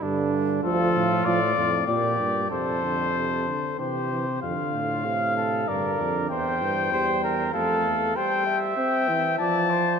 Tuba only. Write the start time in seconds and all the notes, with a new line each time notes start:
0.03 G2
0.65 D2
0.96 A2
1.26 A2
1.57 F2
1.88 A#2
2.19 G2
2.52 F2
3.79 C3
4.43 F2
4.74 A2
5.69 G2
6.00 F2
6.31 E2
6.62 G2
6.92 E2
7.53 F2
7.85 E2